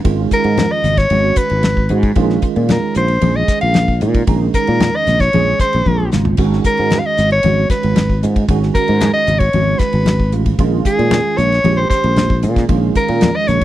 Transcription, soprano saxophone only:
0.33 A#4
0.72 D#5
0.98 C#5
1.37 B4
2.71 A#4
2.97 C5
3.36 D#5
3.61 F5
4.55 A#4
4.96 D#5
5.20 C#5
5.61 C5
6.66 A#4
6.99 F5
7.06 D#5
7.32 C#5
7.71 B4
8.75 A#4
9.14 D#5
9.39 C#5
9.79 B4
10.86 G#4
11.37 C#5
11.74 C5 C#5
11.90 C5
12.97 A#4
13.36 D#5
13.48 C#5

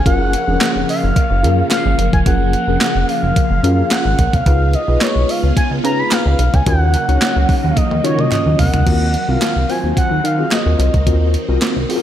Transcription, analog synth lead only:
0.06 F#5
0.90 F5
1.72 F5
2.13 G#5
2.27 F#5
3.09 F5
3.92 F#5
4.34 F5
4.74 D#5
5.02 C#5
5.30 F5
5.57 G#5
5.85 A#5
5.99 B5
6.12 F5
6.54 G#5
6.67 F#5
7.70 F5
7.77 D#5
8.04 C#5
8.20 D#5
8.60 F#5
9.30 F5
9.70 G#5
9.98 F#5
10.25 F5
10.53 D#5

